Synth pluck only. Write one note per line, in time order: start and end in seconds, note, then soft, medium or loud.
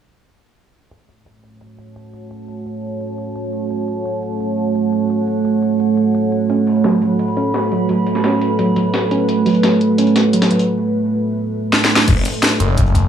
6.50 6.61 C#4 medium
6.84 6.95 F#3 medium
7.02 7.13 F#3 medium
7.37 7.48 C#4 medium
7.72 7.83 F#3 medium
7.89 8.00 F#3 medium
8.24 8.35 C#4 medium
8.59 8.70 F#3 medium
8.76 8.87 F#3 medium
9.11 9.22 C#4 medium
9.46 9.57 F#3 medium
9.63 9.74 F#3 medium
9.98 10.09 C#4 medium
10.33 10.44 F#3 medium
10.51 10.62 F#3 medium